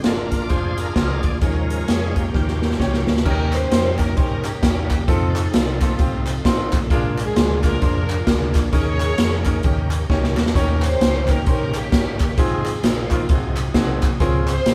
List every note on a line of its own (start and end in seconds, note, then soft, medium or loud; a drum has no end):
0.00 0.43 G1 medium
0.00 0.28 A#2 medium
0.00 0.14 D3 medium
0.00 0.14 G#3 soft
0.00 0.15 C4 medium
0.00 0.35 D4 medium
0.00 0.35 G#4 medium
0.00 0.35 A#4 medium
0.00 closed hi-hat loud
0.04 0.78 D4 medium
0.04 0.35 F4 medium
0.04 0.49 F4 medium
0.04 0.43 A#4 medium
0.04 snare loud
0.32 kick medium
0.32 snare soft
0.32 closed hi-hat medium
0.41 0.50 D5 medium
0.49 0.89 F1 medium
0.49 0.81 D4 medium
0.49 0.81 F4 medium
0.49 0.78 F4 medium
0.49 0.81 G#4 medium
0.49 1.38 G#4 medium
0.49 0.81 C5 medium
0.49 0.79 C5 medium
0.49 kick medium
0.49 closed hi-hat medium
0.78 1.38 D4 medium
0.78 1.39 F4 medium
0.78 1.21 A#4 loud
0.78 closed hi-hat medium
0.96 1.20 C#2 medium
0.96 1.27 D4 medium
0.96 1.27 F4 medium
0.96 1.27 G#4 medium
0.96 1.27 C5 medium
0.96 kick medium
0.96 snare loud
0.96 closed hi-hat medium
1.23 1.39 D2 medium
1.23 1.32 D5 medium
1.23 kick medium
1.23 closed hi-hat medium
1.41 1.81 D#2 medium
1.41 2.11 D#3 medium
1.41 2.29 F3 medium
1.41 2.30 G#3 soft
1.41 1.73 C#4 medium
1.41 2.15 C#4 medium
1.41 1.73 D#4 medium
1.41 1.73 G#4 medium
1.41 1.73 A#4 medium
1.41 1.89 A#4 medium
1.41 kick loud
1.41 closed hi-hat medium
1.70 closed hi-hat medium
1.88 2.27 F2 medium
1.88 2.19 C#4 medium
1.88 2.19 D#4 medium
1.88 2.19 G#4 medium
1.88 2.16 G#4 medium
1.88 2.19 C#5 medium
1.88 snare loud
1.88 closed hi-hat loud
2.16 3.03 A#3 soft
2.16 2.33 C#4 soft
2.16 3.03 G4 medium
2.16 kick medium
2.16 closed hi-hat medium
2.33 2.73 D#2 medium
2.33 3.03 D#3 medium
2.33 3.21 F3 soft
2.33 3.21 G3 soft
2.33 2.65 C#4 medium
2.33 3.21 C#4 medium
2.33 2.65 D#4 medium
2.33 2.65 G4 medium
2.33 2.65 A#4 medium
2.33 kick loud
2.33 snare soft
2.48 snare soft
2.62 snare medium
2.71 snare medium
2.80 3.03 C#2 medium
2.80 3.11 C#4 medium
2.80 3.11 D#4 medium
2.80 3.11 G4 medium
2.80 3.11 C#5 medium
2.80 kick medium
2.80 snare medium
2.94 snare medium
3.07 3.23 D2 medium
3.07 snare medium
3.17 snare medium
3.25 3.64 D#2 loud
3.25 3.95 D#3 medium
3.25 5.04 G3 medium
3.25 5.04 C#4 medium
3.25 3.56 C#4 medium
3.25 4.13 C#4 medium
3.25 5.04 D#4 medium
3.25 3.56 D#4 medium
3.25 3.56 G4 medium
3.25 3.54 G4 medium
3.25 5.04 A#4 medium
3.25 3.56 A#4 loud
3.25 3.51 A#4 loud
3.25 kick loud
3.25 crash medium
3.52 4.16 G4 medium
3.52 3.99 C5 loud
3.52 clap loud
3.52 closed hi-hat medium
3.71 4.17 F2 medium
3.71 3.88 C#4 medium
3.71 3.88 D#4 medium
3.71 3.88 G4 medium
3.71 3.88 C5 medium
3.71 snare loud
3.71 closed hi-hat loud
3.98 4.09 C#4 medium
3.98 4.09 D#4 medium
3.98 4.10 G4 medium
3.98 4.10 A#4 medium
3.98 4.16 A#4 medium
3.98 kick medium
3.98 snare soft
3.98 clap medium
3.98 closed hi-hat medium
4.16 4.56 G2 medium
4.16 4.48 C#4 medium
4.16 4.44 C#4 medium
4.16 4.47 D#4 medium
4.16 4.48 G4 medium
4.16 4.44 G4 medium
4.16 4.43 A#4 medium
4.16 4.48 C5 medium
4.16 kick loud
4.16 closed hi-hat medium
4.44 5.04 A#3 medium
4.44 5.04 C#4 medium
4.44 4.89 G4 medium
4.44 clap loud
4.44 closed hi-hat medium
4.63 5.01 E2 medium
4.63 4.93 C#4 medium
4.63 4.93 D#4 medium
4.63 4.93 G4 medium
4.63 4.94 A#4 medium
4.63 kick loud
4.63 snare loud
4.63 closed hi-hat loud
4.90 5.07 G4 medium
4.90 kick medium
4.90 clap medium
4.90 closed hi-hat medium
5.08 5.47 F2 loud
5.08 6.87 F3 medium
5.08 5.39 C4 loud
5.08 6.87 C4 medium
5.08 5.54 C4 medium
5.08 5.39 D#4 medium
5.08 6.87 D#4 medium
5.08 5.96 D#4 medium
5.08 5.39 F4 medium
5.08 5.15 G#4 medium
5.08 5.39 A4 loud
5.08 5.54 A4 medium
5.08 kick loud
5.08 closed hi-hat medium
5.14 6.90 A4 medium
5.36 clap loud
5.36 closed hi-hat medium
5.53 5.92 C2 medium
5.53 6.69 A3 medium
5.53 5.70 C4 medium
5.53 6.69 C4 medium
5.53 5.70 D#4 medium
5.53 5.70 F4 medium
5.53 6.73 F4 medium
5.53 5.70 A4 medium
5.53 snare loud
5.53 closed hi-hat loud
5.81 5.92 C4 medium
5.81 5.92 D#4 medium
5.81 5.92 F4 medium
5.81 5.92 A4 medium
5.81 kick medium
5.81 snare soft
5.81 clap medium
5.81 closed hi-hat medium
5.99 6.38 C2 medium
5.99 6.30 C4 medium
5.99 6.30 D#4 medium
5.99 6.30 F4 medium
5.99 6.30 G4 medium
5.99 kick loud
5.99 closed hi-hat medium
6.26 clap loud
6.26 closed hi-hat medium
6.45 6.83 A1 medium
6.45 6.76 C4 medium
6.45 6.76 D#4 medium
6.45 6.76 F4 medium
6.45 6.76 C5 medium
6.45 kick medium
6.45 snare loud
6.45 closed hi-hat loud
6.72 kick loud
6.72 snare soft
6.72 clap loud
6.72 closed hi-hat medium
6.90 7.29 A#1 loud
6.90 7.60 A#2 medium
6.90 8.69 F3 medium
6.90 7.78 G#3 medium
6.90 8.69 A#3 medium
6.90 8.69 D4 medium
6.90 7.22 D4 loud
6.90 7.18 D4 medium
6.90 7.21 F4 medium
6.90 7.05 F4 medium
6.90 8.69 G#4 medium
6.90 7.21 G#4 medium
6.90 7.22 A#4 loud
6.90 kick loud
6.90 closed hi-hat medium
7.18 7.81 D4 medium
7.18 7.81 F4 medium
7.18 7.61 G#4 loud
7.18 clap loud
7.18 closed hi-hat medium
7.36 7.75 D2 medium
7.36 7.52 D4 medium
7.36 7.52 F4 medium
7.36 7.52 G#4 medium
7.36 7.52 C5 medium
7.36 snare loud
7.36 closed hi-hat loud
7.64 7.74 D4 medium
7.64 7.74 F4 medium
7.64 7.74 G#4 medium
7.64 7.74 A#4 medium
7.64 7.81 A#4 loud
7.64 kick medium
7.64 snare soft
7.64 clap medium
7.64 closed hi-hat medium
7.82 8.21 F2 loud
7.82 8.13 D4 medium
7.82 8.69 D4 medium
7.82 8.12 F4 medium
7.82 8.69 F4 medium
7.82 8.13 G#4 medium
7.82 8.51 A#4 loud
7.82 8.13 C5 medium
7.82 kick loud
7.82 closed hi-hat medium
8.10 clap loud
8.10 closed hi-hat medium
8.27 8.66 D2 medium
8.27 8.58 D4 medium
8.27 8.58 F4 medium
8.27 8.58 G#4 medium
8.27 8.58 A#4 medium
8.27 kick medium
8.27 snare loud
8.27 closed hi-hat loud
8.54 kick medium
8.54 snare soft
8.54 clap loud
8.54 closed hi-hat medium
8.72 9.11 D#2 loud
8.72 9.62 D#3 medium
8.72 9.42 D#3 medium
8.72 9.62 A#3 medium
8.72 9.62 C#4 medium
8.72 9.04 C#4 loud
8.72 9.04 D#4 medium
8.72 9.62 G#4 medium
8.72 9.04 G#4 medium
8.72 9.60 G#4 medium
8.72 9.04 A#4 loud
8.72 9.60 A#4 medium
8.72 9.60 C#5 loud
8.72 kick loud
8.72 closed hi-hat medium
9.00 clap loud
9.00 closed hi-hat medium
9.18 9.57 F2 medium
9.18 9.35 C#4 medium
9.18 9.35 D#4 medium
9.18 9.35 G#4 medium
9.18 9.35 A#4 medium
9.18 snare loud
9.18 closed hi-hat loud
9.45 9.56 C#4 medium
9.45 9.56 D#4 medium
9.45 9.56 G#4 medium
9.45 9.57 A#4 loud
9.45 kick medium
9.45 clap medium
9.45 closed hi-hat medium
9.63 10.03 D#2 loud
9.63 10.33 D#3 medium
9.63 12.34 D#3 medium
9.63 12.34 A#3 medium
9.63 9.95 C#4 medium
9.63 12.34 C#4 medium
9.63 9.95 D#4 medium
9.63 9.95 G4 medium
9.63 12.34 G4 medium
9.63 9.95 A#4 medium
9.63 kick loud
9.63 closed hi-hat medium
9.91 clap loud
9.91 closed hi-hat medium
10.10 10.37 C#2 medium
10.10 10.41 C#4 medium
10.10 10.41 D#4 medium
10.10 10.41 G4 medium
10.10 10.41 C#5 medium
10.10 kick medium
10.10 snare medium
10.24 snare medium
10.37 10.52 D#2 medium
10.37 snare medium
10.37 clap loud
10.46 snare medium
10.55 10.94 D#2 medium
10.55 10.86 C#4 medium
10.55 11.43 C#4 medium
10.55 10.86 D#4 medium
10.55 10.86 G4 medium
10.55 10.82 G4 medium
10.55 10.81 A#4 medium
10.55 10.86 C#5 loud
10.55 kick loud
10.55 closed hi-hat medium
10.82 11.46 G4 medium
10.82 11.28 C5 loud
10.82 clap loud
10.82 closed hi-hat medium
11.01 11.40 C#2 loud
11.01 11.17 C#4 medium
11.01 11.18 D#4 medium
11.01 11.18 G4 medium
11.01 11.18 C5 medium
11.01 snare loud
11.01 closed hi-hat loud
11.28 11.39 C#4 medium
11.28 11.39 D#4 medium
11.28 11.39 G4 medium
11.28 11.45 A#4 loud
11.28 11.39 A#4 medium
11.28 kick medium
11.28 snare soft
11.28 clap medium
11.28 closed hi-hat medium
11.46 11.86 A#1 medium
11.46 12.16 D#3 medium
11.46 11.74 C#4 medium
11.46 11.78 C#4 medium
11.46 11.78 D#4 medium
11.46 11.74 G4 medium
11.46 11.78 G4 medium
11.46 11.72 A#4 loud
11.46 11.78 C5 medium
11.46 kick loud
11.46 closed hi-hat medium
11.74 12.35 A#3 medium
11.74 12.34 C#4 medium
11.74 12.19 G4 loud
11.74 clap loud
11.74 closed hi-hat medium
11.92 12.31 G1 medium
11.92 12.23 C#4 medium
11.92 12.23 D#4 medium
11.92 12.23 G4 medium
11.92 12.23 A#4 medium
11.92 kick loud
11.92 snare loud
11.92 closed hi-hat loud
12.19 12.37 G4 medium
12.19 kick medium
12.19 snare soft
12.19 clap loud
12.19 closed hi-hat medium
12.38 12.77 G#1 loud
12.38 13.08 G#2 medium
12.38 13.28 F3 medium
12.38 12.69 C4 loud
12.38 12.82 C4 medium
12.38 13.28 C4 medium
12.38 12.69 D#4 medium
12.38 13.28 D#4 medium
12.38 12.82 F4 medium
12.38 12.69 F4 medium
12.38 12.84 G#4 loud
12.38 12.69 G#4 loud
12.38 13.28 G#4 medium
12.38 kick loud
12.38 closed hi-hat medium
12.65 clap medium
12.65 closed hi-hat medium
12.83 13.22 A#1 medium
12.83 13.98 C4 medium
12.83 13.00 C4 medium
12.83 13.00 D#4 medium
12.83 13.00 F4 medium
12.83 14.03 F4 medium
12.83 13.00 G#4 medium
12.83 snare loud
12.83 closed hi-hat loud
13.11 13.22 C4 medium
13.11 13.22 D#4 medium
13.11 13.22 F4 medium
13.11 13.22 A#4 medium
13.11 kick medium
13.11 clap medium
13.11 closed hi-hat medium
13.29 13.68 C2 loud
13.29 13.99 C3 medium
13.29 14.19 F#3 medium
13.29 14.19 C4 medium
13.29 13.60 C4 medium
13.29 14.19 D#4 medium
13.29 13.60 D#4 medium
13.29 13.36 F#4 medium
13.29 13.60 F#4 medium
13.29 13.60 G#4 medium
13.29 kick loud
13.29 closed hi-hat medium
13.35 14.20 G#4 medium
13.56 clap loud
13.56 closed hi-hat medium
13.74 14.13 C2 medium
13.74 14.06 C4 medium
13.74 14.06 D#4 medium
13.74 14.06 F#4 medium
13.74 14.06 G#4 medium
13.74 kick medium
13.74 snare loud
13.74 closed hi-hat loud
14.02 kick medium
14.02 clap loud
14.02 closed hi-hat medium
14.20 14.59 C#2 loud
14.20 14.74 C#3 medium
14.20 14.27 E3 soft
14.20 14.74 C4 medium
14.20 14.51 C4 medium
14.20 14.51 C#4 medium
14.20 14.51 F4 medium
14.20 14.48 F4 medium
14.20 14.51 G#4 loud
14.20 14.74 G#4 medium
14.20 14.33 A#4 loud
14.20 kick loud
14.20 closed hi-hat medium
14.26 14.74 F3 medium
14.47 14.74 F4 medium
14.47 14.74 G#4 medium
14.47 14.74 C5 loud
14.47 clap loud
14.47 closed hi-hat medium
14.66 14.74 A#1 loud
14.66 14.74 C4 medium
14.66 14.74 C#4 medium
14.66 14.74 F4 medium
14.66 14.74 G4 medium
14.66 snare loud
14.66 closed hi-hat loud